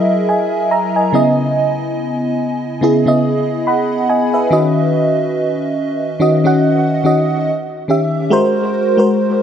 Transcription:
fm electric piano
Already playing: F#3 E4 G#4 A#4 D#5 E5 G#5
0.29 D#5 G#5
0.71 E5 A#5
0.96 D#5 G#5
1.13 C#3 B3 E4 D#5
2.81 C#3 B3 E4 G#4
3.06 C#3 B3 E4 D#5
3.67 F#5 B5
4.09 D#5 G#5
4.34 B4 E5
4.50 D#3 C#4 F#4 D#5
6.20 D#3 C#4 F#4 D#5
6.44 D#3 C#4 F#4 F#5
7.04 D#3 C#4 F#4 D#5
7.88 D#3 C#4 G4 E5
8.30 G#3 F#4 A#4 C5
8.97 G#3 F#4 A#4 C5

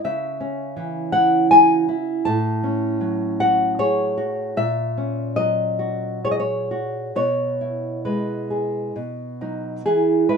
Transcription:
nylon-string guitar
0.04 C#3 E5
0.40 C#4
0.76 E3
1.12 E4 F#5
1.51 F#4 G#5
1.88 E4
2.25 A2 A5
2.63 C#4
3.01 F#3
3.40 F#4 F#5
3.79 G#4 C#5
4.17 F#4
4.57 A#2 E5
4.98 C#4
5.36 F#3 D#5
5.79 F#4
6.24 G#4 C#5
6.31 D#5
6.40 C#5
6.71 F#4
7.16 B2 C#5
7.61 E4
8.05 G#3 B4
8.50 G#4
8.96 B2
9.41 F#3 D#4
9.86 E3 G#4
10.29 G#3 E4 B4

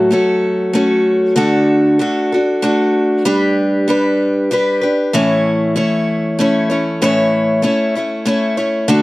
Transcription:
steel-string acoustic guitar
Already playing: A2 F#3 A3 C#4 F#4 A4
0.11 A3 C#4 F#4 A4
0.73 A3 C#4 F#4 A4
1.36 D3 A3 D4 F#4 A4
1.99 A3 D4 F#4 A4
2.32 D4 F#4 A4
2.62 A3 D4 F#4 A4
3.25 G3 D4 G4 B4
3.88 G3 D4 G4 B4
4.51 G3 D4 G4 B4
4.81 D4 G4 B4
5.13 A2 E3 A3 C#4 E4 C#5
5.76 A3 C#4 E4 C#5
6.39 A3 C#4 E4 C#5
6.70 A3 C#4 E4 C#5
7.02 A2 E3 A3 C#4 E4 C#5
7.62 A3 C#4 E4 C#5
7.95 A3 C#4 E4 C#5
8.25 A3 C#4 E4 C#5
8.57 A3 C#4 E4 C#5
8.88 D3 A3 D4 F#4 A4

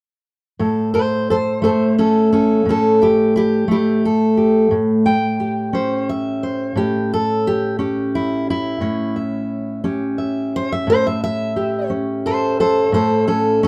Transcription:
steel-string acoustic guitar
0.59 A2 A4
0.94 A4 C5
1.30 A4 C5
1.62 A3 A4 C5
1.99 C#4 A4
2.33 C#4 A4
2.66 A2 C#4
2.70 A4
3.02 E4 G4
3.36 E4 G4
3.68 A3 E4 G4
4.05 A4
4.37 G4
4.71 A2
5.06 G5
5.40 G4
5.73 C#4 C5
6.09 E5
6.43 C5
6.76 A2 G4
7.14 A4
7.47 G4
7.79 C#4 G4
8.15 E4
8.50 E4
8.81 A2 C#4
9.16 E5
9.84 C#4 G4
10.18 E5
10.56 C5
10.72 E5
10.87 A2 C5
11.07 E5
11.24 E5
11.56 G4
11.90 C#4
12.26 A4 C5
12.60 A4 C5
12.92 A2 A4 C5
13.28 C#4 A4
13.63 C#4 A4

